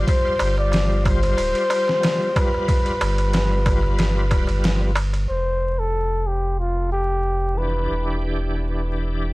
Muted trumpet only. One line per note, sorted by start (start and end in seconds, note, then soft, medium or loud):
0.09 0.55 C5 loud
0.59 1.03 D5 medium
1.07 2.39 C5 loud
2.37 4.97 B4 medium
5.30 5.81 C5 medium
5.79 6.28 A4 medium
6.27 6.59 G4 medium
6.59 6.90 F4 medium
6.92 7.59 G4 medium
7.58 8.23 B4 medium